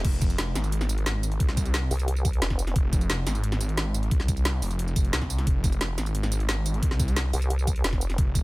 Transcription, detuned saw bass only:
0, 0, Header, 1, 2, 480
1, 0, Start_track
1, 0, Key_signature, -4, "minor"
1, 0, Tempo, 338983
1, 65, Time_signature, 4, 2, 24, 8
1, 11938, End_track
2, 0, Start_track
2, 0, Title_t, "Detuned saw bass"
2, 0, Program_c, 0, 39
2, 65, Note_on_c, 0, 29, 97
2, 766, Note_off_c, 0, 29, 0
2, 784, Note_on_c, 0, 32, 93
2, 1965, Note_off_c, 0, 32, 0
2, 1985, Note_on_c, 0, 36, 99
2, 2686, Note_off_c, 0, 36, 0
2, 3905, Note_on_c, 0, 29, 98
2, 4606, Note_off_c, 0, 29, 0
2, 4625, Note_on_c, 0, 32, 96
2, 5805, Note_off_c, 0, 32, 0
2, 5825, Note_on_c, 0, 36, 102
2, 6526, Note_off_c, 0, 36, 0
2, 6544, Note_on_c, 0, 29, 98
2, 7245, Note_off_c, 0, 29, 0
2, 7265, Note_on_c, 0, 36, 99
2, 7726, Note_off_c, 0, 36, 0
2, 7745, Note_on_c, 0, 29, 103
2, 8446, Note_off_c, 0, 29, 0
2, 8465, Note_on_c, 0, 32, 93
2, 9646, Note_off_c, 0, 32, 0
2, 9665, Note_on_c, 0, 36, 100
2, 10366, Note_off_c, 0, 36, 0
2, 11585, Note_on_c, 0, 29, 102
2, 11938, Note_off_c, 0, 29, 0
2, 11938, End_track
0, 0, End_of_file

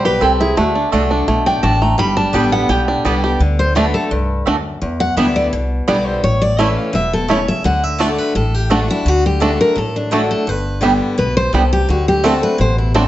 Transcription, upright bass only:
0, 0, Header, 1, 2, 480
1, 0, Start_track
1, 0, Tempo, 353774
1, 773, Time_signature, 4, 2, 24, 8
1, 17746, End_track
2, 0, Start_track
2, 0, Title_t, "Upright bass"
2, 0, Program_c, 0, 32
2, 0, Note_on_c, 0, 35, 82
2, 220, Note_off_c, 0, 35, 0
2, 289, Note_on_c, 0, 36, 80
2, 699, Note_off_c, 0, 36, 0
2, 777, Note_on_c, 0, 38, 96
2, 1128, Note_off_c, 0, 38, 0
2, 1252, Note_on_c, 0, 36, 88
2, 1661, Note_off_c, 0, 36, 0
2, 1727, Note_on_c, 0, 35, 81
2, 2139, Note_off_c, 0, 35, 0
2, 2209, Note_on_c, 0, 33, 88
2, 2620, Note_off_c, 0, 33, 0
2, 2688, Note_on_c, 0, 31, 85
2, 3043, Note_off_c, 0, 31, 0
2, 3167, Note_on_c, 0, 33, 86
2, 3579, Note_off_c, 0, 33, 0
2, 3645, Note_on_c, 0, 35, 84
2, 4058, Note_off_c, 0, 35, 0
2, 4131, Note_on_c, 0, 36, 82
2, 4541, Note_off_c, 0, 36, 0
2, 4606, Note_on_c, 0, 38, 90
2, 5313, Note_off_c, 0, 38, 0
2, 5572, Note_on_c, 0, 36, 80
2, 5982, Note_off_c, 0, 36, 0
2, 6059, Note_on_c, 0, 38, 75
2, 6466, Note_off_c, 0, 38, 0
2, 6536, Note_on_c, 0, 40, 98
2, 6887, Note_off_c, 0, 40, 0
2, 7009, Note_on_c, 0, 38, 95
2, 7420, Note_off_c, 0, 38, 0
2, 7495, Note_on_c, 0, 36, 81
2, 7903, Note_off_c, 0, 36, 0
2, 7976, Note_on_c, 0, 35, 79
2, 8384, Note_off_c, 0, 35, 0
2, 8454, Note_on_c, 0, 33, 92
2, 9157, Note_off_c, 0, 33, 0
2, 9406, Note_on_c, 0, 28, 82
2, 10112, Note_off_c, 0, 28, 0
2, 10368, Note_on_c, 0, 38, 91
2, 11073, Note_off_c, 0, 38, 0
2, 11325, Note_on_c, 0, 33, 81
2, 12031, Note_off_c, 0, 33, 0
2, 12280, Note_on_c, 0, 38, 90
2, 12987, Note_off_c, 0, 38, 0
2, 13245, Note_on_c, 0, 33, 77
2, 13951, Note_off_c, 0, 33, 0
2, 14209, Note_on_c, 0, 31, 88
2, 14913, Note_off_c, 0, 31, 0
2, 15168, Note_on_c, 0, 35, 89
2, 15577, Note_off_c, 0, 35, 0
2, 15644, Note_on_c, 0, 36, 84
2, 16054, Note_off_c, 0, 36, 0
2, 16125, Note_on_c, 0, 38, 90
2, 16830, Note_off_c, 0, 38, 0
2, 17084, Note_on_c, 0, 33, 87
2, 17746, Note_off_c, 0, 33, 0
2, 17746, End_track
0, 0, End_of_file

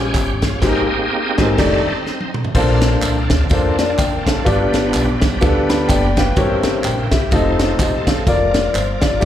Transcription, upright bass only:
0, 0, Header, 1, 2, 480
1, 0, Start_track
1, 0, Key_signature, -2, "major"
1, 0, Tempo, 476948
1, 639, Time_signature, 4, 2, 24, 8
1, 9310, End_track
2, 0, Start_track
2, 0, Title_t, "Upright bass"
2, 0, Program_c, 0, 32
2, 144, Note_on_c, 0, 31, 94
2, 560, Note_off_c, 0, 31, 0
2, 628, Note_on_c, 0, 32, 98
2, 822, Note_off_c, 0, 32, 0
2, 1391, Note_on_c, 0, 32, 100
2, 1533, Note_off_c, 0, 32, 0
2, 1595, Note_on_c, 0, 29, 104
2, 1788, Note_off_c, 0, 29, 0
2, 2563, Note_on_c, 0, 34, 116
2, 2974, Note_off_c, 0, 34, 0
2, 3049, Note_on_c, 0, 36, 96
2, 3285, Note_off_c, 0, 36, 0
2, 3327, Note_on_c, 0, 38, 86
2, 3499, Note_off_c, 0, 38, 0
2, 3530, Note_on_c, 0, 41, 103
2, 3938, Note_off_c, 0, 41, 0
2, 4012, Note_on_c, 0, 30, 86
2, 4419, Note_off_c, 0, 30, 0
2, 4491, Note_on_c, 0, 31, 108
2, 4898, Note_off_c, 0, 31, 0
2, 4973, Note_on_c, 0, 35, 105
2, 5208, Note_off_c, 0, 35, 0
2, 5251, Note_on_c, 0, 36, 96
2, 5421, Note_off_c, 0, 36, 0
2, 5457, Note_on_c, 0, 38, 99
2, 5861, Note_off_c, 0, 38, 0
2, 5934, Note_on_c, 0, 30, 103
2, 6339, Note_off_c, 0, 30, 0
2, 6410, Note_on_c, 0, 31, 104
2, 6817, Note_off_c, 0, 31, 0
2, 6888, Note_on_c, 0, 34, 103
2, 7123, Note_off_c, 0, 34, 0
2, 7163, Note_on_c, 0, 36, 88
2, 7335, Note_off_c, 0, 36, 0
2, 7365, Note_on_c, 0, 29, 112
2, 7772, Note_off_c, 0, 29, 0
2, 7843, Note_on_c, 0, 28, 101
2, 8250, Note_off_c, 0, 28, 0
2, 8321, Note_on_c, 0, 29, 111
2, 8728, Note_off_c, 0, 29, 0
2, 8799, Note_on_c, 0, 31, 93
2, 9206, Note_off_c, 0, 31, 0
2, 9310, End_track
0, 0, End_of_file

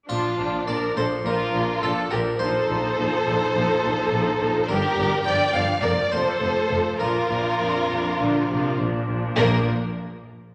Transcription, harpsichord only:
0, 0, Header, 1, 2, 480
1, 0, Start_track
1, 0, Key_signature, -2, "major"
1, 0, Tempo, 573066
1, 83, Time_signature, 4, 2, 24, 8
1, 4881, Tempo, 588235
1, 8731, End_track
2, 0, Start_track
2, 0, Title_t, "Harpsichord"
2, 0, Program_c, 0, 6
2, 75, Note_on_c, 0, 65, 43
2, 531, Note_off_c, 0, 65, 0
2, 566, Note_on_c, 0, 74, 46
2, 791, Note_off_c, 0, 74, 0
2, 813, Note_on_c, 0, 72, 47
2, 1036, Note_off_c, 0, 72, 0
2, 1055, Note_on_c, 0, 70, 48
2, 1502, Note_off_c, 0, 70, 0
2, 1533, Note_on_c, 0, 69, 51
2, 1756, Note_off_c, 0, 69, 0
2, 1765, Note_on_c, 0, 70, 54
2, 1992, Note_off_c, 0, 70, 0
2, 2004, Note_on_c, 0, 72, 57
2, 3891, Note_off_c, 0, 72, 0
2, 3924, Note_on_c, 0, 70, 65
2, 4366, Note_off_c, 0, 70, 0
2, 4395, Note_on_c, 0, 79, 65
2, 4620, Note_off_c, 0, 79, 0
2, 4635, Note_on_c, 0, 77, 64
2, 4861, Note_off_c, 0, 77, 0
2, 4878, Note_on_c, 0, 74, 60
2, 5100, Note_off_c, 0, 74, 0
2, 5118, Note_on_c, 0, 72, 64
2, 5807, Note_off_c, 0, 72, 0
2, 5837, Note_on_c, 0, 70, 45
2, 7262, Note_off_c, 0, 70, 0
2, 7774, Note_on_c, 0, 70, 66
2, 8038, Note_off_c, 0, 70, 0
2, 8731, End_track
0, 0, End_of_file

